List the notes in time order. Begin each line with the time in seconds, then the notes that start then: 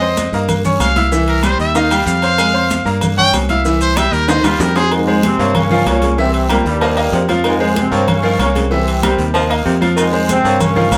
Already playing: F2 D#5
0.01 C4 C5 C6, cowbell, high conga
0.17 cowbell, high conga, low agogo, short guiro, maracas
0.32 G2 A#3 A#4 A#5, high conga, short guiro, maracas
0.49 cowbell, high conga, low conga, low agogo, long guiro, maracas
0.65 C#4 C#5 C#6, cowbell, high conga, low conga, maracas
0.80 C2 F5, cowbell, high conga, low timbale, low agogo, short guiro, maracas
0.96 E4 E5 E6, cowbell, high conga, low agogo, short guiro, maracas
1.12 E3 E4 E5, cowbell, high conga, long guiro, maracas
1.28 A#4, high conga, low agogo
1.43 G3 G4 C5 G5, cowbell, high conga, low agogo, short guiro, maracas
1.59 D#2 E5, cowbell, high conga, short guiro, maracas
1.75 D#3 D#4 D#5 F5, cowbell, high conga, low agogo, long guiro, maracas
1.91 G3 G4 G5, high conga, low agogo, maracas
2.06 F2 F5, cowbell, high conga, short guiro, maracas
2.22 C4 C5 C6, cowbell, low agogo, short guiro, maracas
2.38 G#3 G#4 G#5, cowbell, high conga, low agogo, long guiro, maracas
2.54 C4 C5 C6, cowbell, high conga
2.70 cowbell, high conga, low agogo, short guiro, maracas
2.85 G2 A#3 A#4 A#5, short guiro, maracas
3.01 cowbell, high conga, low conga, low agogo, long guiro, maracas
3.18 C#4 C#5 G5 C#6, cowbell, high conga, low conga
3.33 C2, cowbell, high conga, low timbale, low agogo, short guiro, maracas
3.49 E4 E5 F5 E6, cowbell, high conga, low agogo, short guiro, maracas
3.65 E3 E4 E5, cowbell, high conga, long guiro, maracas
3.81 C5, high conga, low agogo, maracas
3.97 G3 G4 E5 G5, cowbell, high bongo, high conga, low agogo, short guiro, maracas
4.12 D#2 A#4, cowbell, high conga, short guiro, maracas
4.28 D#3 D#4 C5 D#5, cowbell, low bongo, high timbale, low agogo, long guiro, maracas
4.43 D#2 G3 F4 G4 G5, low bongo, high conga, high timbale, low agogo, maracas
4.59 F2 A#4, cowbell, low bongo, high conga, low timbale, short guiro, maracas
4.76 C4 G#4 C5 C6, cowbell, low bongo, low timbale, low agogo, short guiro, maracas
4.91 G#2 D#3 G#3, cowbell, high conga, low agogo, long guiro
5.07 G#3 G#4 C5, cowbell, high conga
5.23 C3 C4, cowbell, high conga, low agogo, short guiro
5.39 G2 F3 A#3 A#4 C#5, short guiro
5.55 C#3 C#4, cowbell, high conga, low conga, low agogo, long guiro
5.70 D#3 F3 F4 F5, cowbell, high conga, low conga
5.86 C2 A#2 A#3 C#4 A#4 C#5, cowbell, high conga, low timbale, low agogo, short guiro
6.02 C#3, cowbell, high conga, low agogo, short guiro
6.18 C3 E3 C4 E4 E5, cowbell, long guiro
6.34 high conga, low agogo
6.49 A#2 C3 G3 A#3 G4 A#4, cowbell, high conga, low agogo, short guiro
6.65 D#2 G2 G3, cowbell, short guiro
6.81 F3 A#3 A#4 D#5, cowbell, low agogo, long guiro
6.97 A#3 A#4 D#5, high conga, low agogo
7.12 F2 C3, cowbell, high conga, low timbale, short guiro
7.28 F3 F4 F5, cowbell, high conga, low agogo, short guiro
7.44 G#2 D#3 G#3, cowbell, low agogo, long guiro
7.60 G#3 G#4 C5, cowbell, high conga
7.76 C3 C4, cowbell, high conga, low agogo, short guiro
7.91 G2 F3 A#3 A#4 C#5, short guiro
8.08 C#3 C#4, cowbell, high conga, low conga, low agogo, long guiro
8.23 D#3 F3 F4 F5, cowbell, high conga
8.39 C2 C#3 A#3 C#4 A#4 C#5, cowbell, high conga, low agogo, short guiro
8.55 C3 C#3 C4, cowbell, high conga, low agogo, short guiro
8.71 E3 E4 E5, cowbell, high conga, long guiro
8.87 high conga, low agogo
9.03 C3 G3 G4 A#4, cowbell, high conga, low agogo, short guiro
9.18 D#2, cowbell, short guiro
9.34 F3 A#3 A#4 D#5, cowbell, low agogo, long guiro
9.50 A#3 A#4 D#5, high conga, low agogo
9.65 F2 C3, cowbell, high conga, short guiro
9.81 F3 F4 F5, cowbell, high conga, low agogo, short guiro
9.96 G#2 D#3 G#3, cowbell, high conga, low agogo, long guiro, maracas
10.13 G#3 G#4 C5, cowbell, high conga
10.29 C3 C4, cowbell, high conga, low agogo, short guiro, maracas
10.44 G2 F3 A#3 A#4 C#5, high conga, short guiro, maracas
10.60 C#3 C#4, cowbell, high conga, low conga, low agogo, long guiro, maracas
10.76 D#3 F3 F4 F5, cowbell, high conga, low conga
10.91 C2 A#2 A#3 C#4 A#4 C#5, cowbell, high conga, low agogo, short guiro, maracas